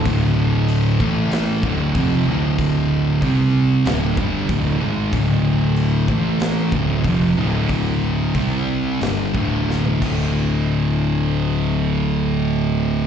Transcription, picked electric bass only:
X:1
M:4/4
L:1/8
Q:1/4=94
K:Dm
V:1 name="Picked electric bass" clef=bass
D,,,3 A,,,2 D,,, F,,, D,,,- | D,,,2 C,,2 D,,, G,,, D,,, ^G,,, | D,,,3 A,,,2 D,,, F,,, D,,,- | D,,,2 C,,2 G,,, D,,,2 D,,,- |
D,,,8 |]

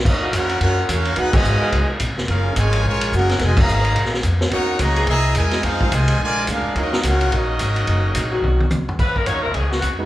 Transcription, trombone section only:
X:1
M:4/4
L:1/8
Q:"Swing" 1/4=215
K:Ebm
V:1 name="Trombone section"
[G,B,E]2 [B,DG]2 [B,DG]2 [B,DF]2 | [CEG] [C,E,A,]4 z3 | [B,DF]2 [D,F,A,]2 [D,F,A,]2 [B,DG]2 | [C,E,A,] [C,E,B,]4 z3 |
[B,DG]2 [D,G,B,]2 [B,,=E,B,]2 [B,,E,^G,]2 | [A,=CF]2 [=C,E,A,]2 [=D,F,A,]2 [A,=DF]2 | [G,B,E]2 [B,DG]2 [G,B,E]4- | [G,B,E]6 z2 |
z8 |]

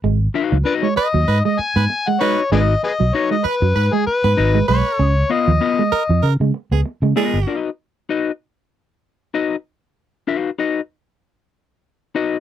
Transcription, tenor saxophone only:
X:1
M:4/4
L:1/16
Q:"Swing 16ths" 1/4=97
K:D#m
V:1 name="Tenor saxophone"
z6 B z B z2 B z2 B2 | z6 B z B z2 B z2 B2- | B z4 z A z A z2 G z2 G2- | G z12 z3 |
z16 |]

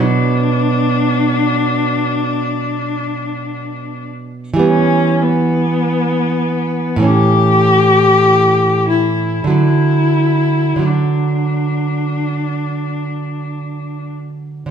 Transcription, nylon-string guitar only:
X:1
M:4/4
L:1/8
Q:1/4=49
K:D
V:1 name="Nylon-string guitar" clef=bass
[B,,F,B,]8 | [E,G,B,]4 [A,,E,C]4 | [D,F,D]2 [D,F,D]6 |]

